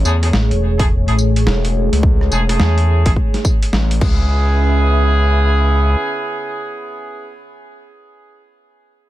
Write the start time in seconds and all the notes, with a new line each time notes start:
Already playing: A3 G#4 C#5
0.05 E2 A3 C#4 E4 G#4, tambourine
0.23 A3 C#4 E4 G#4, cross-stick, closed hi-hat
0.33 A1, snare
0.51 E1, closed hi-hat
0.79 A3 C#4 E4 G#4, kick, closed hi-hat
1.07 A1 A3 C#4 E4 G#4, closed hi-hat
1.19 tambourine
1.36 closed hi-hat
1.47 E1, snare
1.65 closed hi-hat
1.93 C#2, closed hi-hat
2.03 kick
2.21 cross-stick
2.31 E1 A3 C#4 E4 G#4, tambourine
2.49 A3 C#4 E4 G#4, cross-stick, closed hi-hat
2.60 E2, snare
2.78 closed hi-hat
3.06 A1 A3 C#4 E4 G#4, kick, closed hi-hat
3.16 kick
3.34 snare, closed hi-hat
3.45 kick, tambourine
3.63 closed hi-hat
3.73 A1, snare
3.91 closed hi-hat
4.01 C#2 B3 C#4 E4 G#4 B4 E5, kick, crash